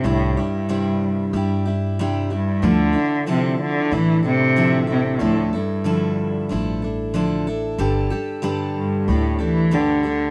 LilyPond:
<<
  \new Staff \with { instrumentName = "Steel-string acoustic guitar" } { \time 4/4 \key d \dorian \tempo 4 = 93 <c g d' e' g'>8 <d' e' g'>8 <c g d' e' g'>4 <g d' e' g'>8 <d' e' g'>8 <c g d' e' g'>8 <d' e' g'>8 | <d f d' e' a'>8 <d' e' a'>8 <d f d' e' a'>4 <d' e' a'>8 <d' e' a'>8 <d f d' e' a'>8 <d' e' a'>8 | <d f d' e' a'>8 <d' e' a'>8 <d f d' e' a'>4 <f d' e' a'>8 <d' e' a'>8 <d f d' e' a'>8 <d' e' a'>8 | <g, d g d' g' a'>8 <g d' g' a'>8 <g, d g d' g' a'>4 <g d' g' a'>8 <g d' g' a'>8 <g, d g d' g' a'>8 <g d' g' a'>8 | }
  \new Staff \with { instrumentName = "Cello" } { \clef bass \time 4/4 \key d \dorian a,8 g,2 r4 g,8 | d4 c8 d8 e8 c4 c8 | a,8 g,2 r4. | r4. g,8 a,8 e8 d4 | }
  \new Staff \with { instrumentName = "Upright bass" } { \clef bass \time 4/4 \key d \dorian c,8 r4. g,2 | d,8 r4. a,,2 | d,8 r4. a,,2 | g,,8 r4. d,2 | }
>>